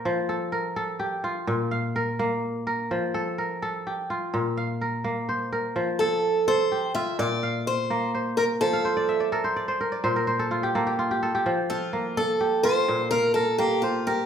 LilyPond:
<<
  \new Staff \with { instrumentName = "Kora" } { \time 12/8 \key f \major \tempo 4. = 84 << { <bes' c''>8 a'8 bes'4 g'8 f'4 f''8 bes'4. bes'8~ | bes'8 a'8 bes'4 g'8 f'4 f''8 bes'4 c''8 bes'8~ | bes'8 a'4. g'8 f'4 f''4. c''8 bes'8~ | bes'8 r1 r4. |
r8 a'8 bes4 g'8 f'4 f''8 bes'4 c''8 bes'8 | } \\ { r1. | r1. | r1. | r16 f''16 c''16 d''16 e''16 d''16 bes'16 c''16 d''16 c''16 bes'16 d''16 c''16 bes'16 c''16 a'16 f'16 g'16 a'16 g'16 f'16 g'16 a'16 g'16~ |
g'16 r1 r4. r16 | } >> }
  \new Staff \with { instrumentName = "Kora" } { \clef bass \time 12/8 \key f \major f4 r8 a'4 r8 bes,4 r8 bes4 r8 | f4 r8 a'4 r8 bes,4 r8 bes4 r8 | f4 r8 a'4 r8 bes,4 r8 bes4 r8 | f4 r8 a'4 r8 bes,4 r8 bes4 r8 |
f4 r8 a'4 r8 bes,4 r8 bes4 r8 | }
  \new Staff \with { instrumentName = "Steel-string acoustic guitar" } { \time 12/8 \key f \major r1. | r1. | r8 a'4 c''4 e''8 d''4 c''4 r8 bes'8 | a'4. r1 r8 |
r8 f'4 a'4 c''4 bes'8 a'8 g'8 f'8 g'8 | }
>>